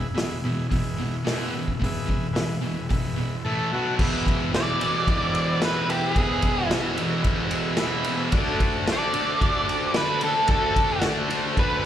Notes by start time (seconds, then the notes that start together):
Already playing: E2 B2
0.14 E2 B2 G#4 B4 E5, snare, open hi-hat
0.44 E2 B2 G#4 B4 E5
0.70 E2 B2 G#4 B4 E5, kick, open hi-hat
0.97 E2 B2
1.25 E2 B2 E3 G#4 B4, snare, open hi-hat
1.30 E5
1.54 E2 B2
1.68 kick
1.80 E2 B2 G#4 B4, kick, open hi-hat
1.85 E5
2.06 E2 B2, kick
2.33 E2 B2 G#4 B4 E5, snare, open hi-hat
2.61 E2 B2 G#4 B4
2.66 E5
2.90 E2 B2 G#4 B4 E5, kick, open hi-hat
3.16 E2 B2
3.43 A2 E3 A3 E4 A4 E5 A5
3.72 B2 F#3 B3 F#4 B4 F#5
3.98 E2 B2 E3 G#4 B4 E5, kick, crash
4.27 kick, ride
4.53 E2 B2 E3 G#4 B4 D5 E5, snare, ride
4.81 E2 B2 E3, ride
5.01 G#4 B4 E5
5.07 E2 B2 E3, kick, ride
5.29 G#4 B4 E5
5.35 ride
5.56 G#4 B4
5.61 E2 B2 E3 B4 E5, snare, ride
5.88 E2 B2 E3 G4, ride
6.09 G#4 B4 E5
6.16 E2 B2 E3 G#4, kick, ride
6.42 kick, ride
6.68 E2 G#4 B4 E5, snare, ride
6.72 B2 E3
6.97 E2 B2 E3, ride
7.22 E2 B2 E3 G#4 B4 E5, kick, ride
7.51 G#4 B4 E5, ride
7.77 G#4 B4 E5 B5, snare, ride
7.81 E2 B2 E3
8.04 E2 B2 E3, ride
8.32 D3 F#4 A4 D5, kick, ride
8.36 A3 D4
8.60 kick, ride
8.87 D3 A3 D4 F#4 A4 D5, snare, ride
8.92 D5
9.14 D3 A3 D4, ride
9.38 D3 F#4 A4 D5, kick, ride
9.43 A3 D4
9.62 F#4 A4 D5
9.69 ride
9.90 F#4 A4 D5
9.94 D3 A3 D4 B4, snare, ride
10.21 D3 A3 D4 A4, ride
10.46 D3 A3 D4 F#4 A4 D5, kick, ride
10.52 A4
10.76 kick, ride
11.00 D3 A3 D4 F#4 A4 D5, snare, ride
11.29 D3 A3 D4, ride
11.55 D3 A3 D4 F#4 A4 D5, kick, ride
11.59 B4
11.81 F#4